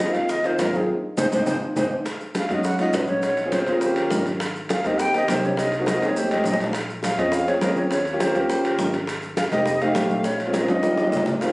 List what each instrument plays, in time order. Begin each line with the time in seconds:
Already playing: recorder D#5
0.00 high bongo, high conga, high timbale, low timbale, maracas
0.08 grand piano A#3 C4 D#4 F4
0.12 upright bass D#2, recorder F5, high conga, high timbale, maracas
0.29 recorder D#5, high bongo, high conga, maracas
0.44 grand piano A#3 C4 D#4 F4, recorder C5, high conga, high timbale, maracas
0.59 upright bass G#1, recorder A#4, high bongo, low bongo, high conga, high timbale, low timbale, maracas
0.73 grand piano A#3 C4 D#4 F4, recorder G#4, high conga, maracas
1.17 upright bass G#1, grand piano G#3 C4 D#4, recorder C5, low bongo, low conga, high timbale, maracas
1.32 upright bass G#1, grand piano G#3 C4 D#4, recorder C5, low bongo, low conga, high timbale, maracas
1.46 upright bass G#1, grand piano G#3 C4 D#4, recorder C5, low bongo, low conga, high timbale, maracas
1.76 upright bass G#1, grand piano G#3 C4 D#4, recorder C5, low bongo, low conga, high timbale, maracas
2.05 high bongo, high conga, high timbale, maracas
2.20 high conga, maracas
2.35 recorder F5, high bongo, high conga, high timbale, low timbale, maracas
2.49 upright bass F#2, grand piano G#3 C#4 D#4 F#4, high conga, high timbale, maracas
2.53 recorder D#5
2.63 recorder F#5, high bongo, high conga, maracas
2.78 grand piano G#3 C#4 D#4 F4, recorder D#5, high conga, high timbale, maracas
2.93 upright bass A#1, grand piano G#3 C#4 D#4 F#4, recorder B4, high bongo, low bongo, high conga, high timbale, low timbale, maracas
3.07 recorder C#5, high conga, maracas
3.22 recorder C#5, high bongo, high conga, high timbale, maracas
3.37 high bongo, high conga, high timbale, maracas
3.45 grand piano C4 C#4 F4 G#4
3.52 recorder C5, high bongo, high conga, high timbale, low timbale, maracas
3.60 grand piano C4 C#4 F4 G#4
3.66 upright bass D#2, grand piano C4 C#4 F4 G#4, high bongo, high timbale, maracas
3.73 recorder A#4
3.81 grand piano A#3 C#4 F4 G4, recorder C5, high bongo, high conga, maracas
3.96 recorder A#4, high bongo, high conga, high timbale, maracas
4.10 upright bass G#1, high bongo, low bongo, high conga, low timbale, maracas
4.26 high conga, high timbale, maracas
4.40 high bongo, high conga, high timbale, maracas
4.56 high conga, maracas
4.69 recorder F5, high bongo, high conga, high timbale, low timbale, maracas
4.84 upright bass D#2, grand piano A#3 C4 D#4 G4, recorder D#5, high conga, high timbale, maracas
4.98 recorder F#5 G5, high bongo, high conga, maracas
5.14 grand piano A#3 C4 D#4 G4, recorder D#5, high conga, high timbale, maracas
5.28 upright bass C2, grand piano A#3 C4 D#4 G4, recorder C5, high bongo, low bongo, high conga, high timbale, low timbale, maracas
5.44 recorder C#5, high conga, maracas
5.57 recorder D#5, high bongo, high conga, high timbale, maracas
5.72 high bongo, high conga, high timbale, maracas
5.80 grand piano A#3 C4 D#4 F#4
5.86 recorder D#5, high bongo, high conga, high timbale, low timbale, maracas
5.94 grand piano A#3 C4 D#4 F#4
6.01 upright bass F2, grand piano A#3 C4 D#4 G#4, high timbale, maracas
6.05 recorder C#5, high bongo
6.16 grand piano A3 C4 D#4 G4, recorder C5, high conga, maracas
6.31 recorder D#5, low bongo, high conga, high timbale
6.44 upright bass A#1, low bongo, high conga, low timbale, maracas
6.54 low bongo
6.60 low bongo, high timbale, maracas
6.73 high bongo, high conga, high timbale, maracas
6.89 high conga, maracas
7.03 recorder F5, high bongo, high conga, high timbale, low timbale, maracas
7.17 upright bass F2, grand piano C4 C#4 F4 G#4, recorder D#5, high conga, high timbale, maracas
7.32 recorder F5, high bongo, high conga, maracas
7.47 grand piano C4 C#4 F4 G#4, recorder C#5, high conga, high timbale, maracas
7.61 upright bass D#2, grand piano C4 C#4 F4 G#4, recorder A#4, high bongo, low bongo, high conga, high timbale, low timbale, maracas
7.76 recorder C#5, high conga, maracas
7.91 recorder C#5, high bongo, high timbale, maracas
8.05 high bongo, high conga, high timbale, maracas
8.13 grand piano A#3 C#4 F4 G4
8.20 recorder C5, high bongo, high conga, high timbale, low timbale, maracas
8.27 grand piano A#3 C#4 F4 A#4
8.35 upright bass D#2, grand piano A#3 C#4 F4 G4, high bongo, high timbale, maracas
8.41 recorder A#4
8.49 grand piano A#3 C#4 F4 G4, recorder C5, high bongo, high conga, maracas
8.64 recorder A#4, high bongo, high conga, high timbale, maracas
8.78 upright bass G#1, high bongo, low bongo, high conga, low timbale, maracas
8.93 high timbale, maracas
9.07 high bongo, high conga, high timbale, maracas
9.22 high conga, maracas
9.37 recorder F5, high bongo, high conga, high timbale, low timbale, maracas
9.52 upright bass F1, grand piano A#3 C4 D#4 G4, recorder D#5, high conga, high timbale, maracas
9.66 high bongo, high conga, maracas
9.81 grand piano A3 C4 D#4 G4, recorder F5, high conga, high timbale, maracas
9.95 upright bass A#1, grand piano A3 C4 D#4 G4, high bongo, low bongo, high conga, high timbale, low timbale, maracas
10.10 high conga, maracas
10.24 recorder C#5, high bongo, high timbale, maracas
10.38 high bongo, high conga, high timbale, maracas
10.46 grand piano G#3 C4 C#4 F4
10.53 recorder A#4, high bongo, high conga, high timbale, low timbale, maracas
10.61 grand piano G#3 C4 C#4 F4
10.68 upright bass D#2, grand piano G#3 C4 C#4 F4, recorder D#5, high bongo, high conga, high timbale, maracas
10.83 grand piano G3 A#3 C#4 F4, high bongo, high conga, high timbale, maracas
10.97 high bongo, high conga, low timbale, maracas
11.07 high bongo
11.12 upright bass G#1, low conga, low timbale, maracas
11.17 low bongo
11.26 low bongo, low conga, low timbale, maracas
11.41 grand piano A#3 C4 D#4 F4, high bongo, high timbale, maracas